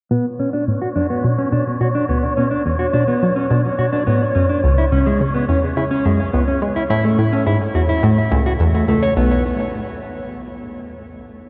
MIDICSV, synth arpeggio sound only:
0, 0, Header, 1, 2, 480
1, 0, Start_track
1, 0, Tempo, 566038
1, 93, Time_signature, 4, 2, 24, 8
1, 9747, End_track
2, 0, Start_track
2, 0, Title_t, "Synth arpeggio sound"
2, 0, Program_c, 0, 84
2, 92, Note_on_c, 0, 47, 96
2, 191, Note_off_c, 0, 47, 0
2, 333, Note_on_c, 0, 47, 70
2, 498, Note_off_c, 0, 47, 0
2, 572, Note_on_c, 0, 45, 71
2, 737, Note_off_c, 0, 45, 0
2, 813, Note_on_c, 0, 42, 75
2, 978, Note_off_c, 0, 42, 0
2, 1054, Note_on_c, 0, 47, 94
2, 1218, Note_off_c, 0, 47, 0
2, 1293, Note_on_c, 0, 47, 76
2, 1458, Note_off_c, 0, 47, 0
2, 1533, Note_on_c, 0, 47, 76
2, 1698, Note_off_c, 0, 47, 0
2, 1773, Note_on_c, 0, 38, 69
2, 1938, Note_off_c, 0, 38, 0
2, 2013, Note_on_c, 0, 47, 77
2, 2178, Note_off_c, 0, 47, 0
2, 2255, Note_on_c, 0, 40, 73
2, 2419, Note_off_c, 0, 40, 0
2, 2494, Note_on_c, 0, 47, 73
2, 2658, Note_off_c, 0, 47, 0
2, 2736, Note_on_c, 0, 54, 74
2, 2833, Note_off_c, 0, 54, 0
2, 2975, Note_on_c, 0, 47, 97
2, 3073, Note_off_c, 0, 47, 0
2, 3214, Note_on_c, 0, 47, 76
2, 3378, Note_off_c, 0, 47, 0
2, 3456, Note_on_c, 0, 45, 72
2, 3619, Note_off_c, 0, 45, 0
2, 3695, Note_on_c, 0, 42, 72
2, 3859, Note_off_c, 0, 42, 0
2, 3934, Note_on_c, 0, 37, 97
2, 4098, Note_off_c, 0, 37, 0
2, 4175, Note_on_c, 0, 37, 73
2, 4339, Note_off_c, 0, 37, 0
2, 4412, Note_on_c, 0, 49, 72
2, 4577, Note_off_c, 0, 49, 0
2, 4653, Note_on_c, 0, 40, 72
2, 4818, Note_off_c, 0, 40, 0
2, 4891, Note_on_c, 0, 49, 81
2, 5057, Note_off_c, 0, 49, 0
2, 5133, Note_on_c, 0, 42, 74
2, 5298, Note_off_c, 0, 42, 0
2, 5374, Note_on_c, 0, 37, 78
2, 5538, Note_off_c, 0, 37, 0
2, 5612, Note_on_c, 0, 56, 70
2, 5712, Note_off_c, 0, 56, 0
2, 5852, Note_on_c, 0, 45, 99
2, 5951, Note_off_c, 0, 45, 0
2, 6091, Note_on_c, 0, 45, 73
2, 6257, Note_off_c, 0, 45, 0
2, 6331, Note_on_c, 0, 44, 74
2, 6497, Note_off_c, 0, 44, 0
2, 6573, Note_on_c, 0, 40, 75
2, 6738, Note_off_c, 0, 40, 0
2, 6811, Note_on_c, 0, 45, 97
2, 6977, Note_off_c, 0, 45, 0
2, 7052, Note_on_c, 0, 37, 98
2, 7280, Note_off_c, 0, 37, 0
2, 7293, Note_on_c, 0, 40, 101
2, 7457, Note_off_c, 0, 40, 0
2, 7532, Note_on_c, 0, 37, 71
2, 7697, Note_off_c, 0, 37, 0
2, 7773, Note_on_c, 0, 35, 88
2, 7996, Note_off_c, 0, 35, 0
2, 9747, End_track
0, 0, End_of_file